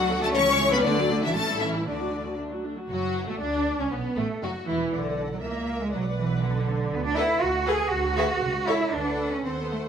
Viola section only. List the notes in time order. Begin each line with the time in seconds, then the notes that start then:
0.10 D3 A3
0.22 F#3 D4
0.36 E3 A3
0.49 G3 C#4
0.60 E3 A3
0.73 G3 C#4
0.86 D3 A3
0.98 F#3 D4
1.11 D3 A3
1.24 F#3 D4
1.36 A3 C#4
1.49 G3 E4
1.62 A3 C#4
1.75 G3 E4
1.87 A3 D4
2.00 F#3 F#4
2.12 A3 D4
2.26 F#3 F#4
2.37 A3 D4
2.51 F#3 F#4
2.64 A3 D4
2.77 F#3 F#4
2.90 F#3
3.29 A3
3.41 D4
3.80 C#4
3.92 B3
4.16 A3
4.42 F#3
4.67 E3
4.93 A4
5.43 A#4
5.93 B4
7.17 A4
7.67 A4
8.17 G#4
8.68 A4
8.93 A4
9.45 A4